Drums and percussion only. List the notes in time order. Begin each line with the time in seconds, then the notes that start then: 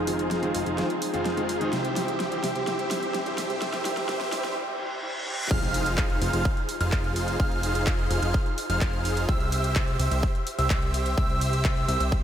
0.07 open hi-hat
0.19 closed hi-hat
0.31 snare, closed hi-hat
0.43 closed hi-hat
0.55 open hi-hat
0.66 closed hi-hat
0.78 snare, closed hi-hat
0.90 closed hi-hat
1.02 open hi-hat
1.14 closed hi-hat
1.25 snare, closed hi-hat
1.37 closed hi-hat
1.49 open hi-hat
1.61 closed hi-hat
1.73 snare, closed hi-hat
1.85 closed hi-hat
1.96 snare, open hi-hat
2.08 closed hi-hat
2.20 snare, closed hi-hat
2.32 closed hi-hat
2.44 snare, open hi-hat
2.56 closed hi-hat
2.67 snare, closed hi-hat
2.79 closed hi-hat
2.91 snare, open hi-hat
3.03 closed hi-hat
3.14 snare, closed hi-hat
3.26 closed hi-hat
3.38 snare, open hi-hat
3.50 closed hi-hat
3.62 snare, closed hi-hat
3.74 snare, closed hi-hat
3.85 snare, open hi-hat
3.97 snare, closed hi-hat
4.09 snare, closed hi-hat
4.21 snare, closed hi-hat
4.33 snare, open hi-hat
4.44 snare, closed hi-hat
5.51 kick, closed hi-hat, crash
5.63 closed hi-hat
5.74 open hi-hat
5.86 closed hi-hat
5.98 kick, clap, closed hi-hat
6.10 closed hi-hat
6.22 open hi-hat
6.33 closed hi-hat
6.45 kick, closed hi-hat
6.57 closed hi-hat
6.69 open hi-hat
6.81 closed hi-hat
6.92 kick, clap, closed hi-hat
7.04 closed hi-hat
7.16 open hi-hat
7.28 closed hi-hat
7.40 kick, closed hi-hat
7.52 closed hi-hat
7.63 open hi-hat
7.75 closed hi-hat
7.87 kick, clap, closed hi-hat
7.99 closed hi-hat
8.11 open hi-hat
8.23 closed hi-hat
8.34 kick, closed hi-hat
8.46 closed hi-hat
8.58 open hi-hat
8.70 closed hi-hat
8.81 kick, clap, closed hi-hat
8.93 closed hi-hat
9.05 open hi-hat
9.17 closed hi-hat
9.29 kick, closed hi-hat
9.41 closed hi-hat
9.52 open hi-hat
9.64 closed hi-hat
9.76 kick, clap, closed hi-hat
9.88 closed hi-hat
10.00 open hi-hat
10.11 closed hi-hat
10.23 kick, closed hi-hat
10.35 closed hi-hat
10.47 open hi-hat
10.59 closed hi-hat
10.70 kick, clap, closed hi-hat
10.82 closed hi-hat
10.94 open hi-hat
11.06 closed hi-hat
11.18 kick, closed hi-hat
11.30 closed hi-hat
11.41 open hi-hat
11.53 closed hi-hat
11.65 kick, clap, closed hi-hat
11.77 closed hi-hat
11.89 open hi-hat
12.00 closed hi-hat
12.12 kick, closed hi-hat